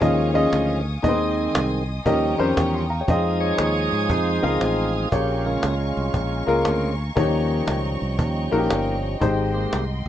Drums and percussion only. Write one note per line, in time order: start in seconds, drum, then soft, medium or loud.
0.02 cajon bass loud
0.53 cajon slap medium
0.86 cajon slap soft
1.04 cajon bass loud
1.37 cajon slap soft
1.55 cajon slap loud
1.88 cajon slap soft
2.06 cajon bass loud
2.57 cajon bass medium
2.57 cajon slap medium
2.90 cajon slap soft
2.99 cajon slap soft
3.08 cajon bass loud
3.41 cajon slap soft
3.58 cajon slap loud
4.10 cajon bass loud
4.43 cajon slap soft
4.61 cajon slap medium
5.12 cajon bass loud
5.46 cajon slap soft
5.63 cajon slap loud
6.14 cajon bass loud
6.48 cajon slap soft
6.65 cajon slap medium
6.99 cajon slap soft
7.17 cajon bass loud
7.68 cajon slap loud
8.01 cajon slap soft
8.19 cajon bass loud
8.70 cajon slap loud
9.04 cajon slap soft
9.21 cajon bass loud
9.54 cajon slap soft
9.73 cajon slap loud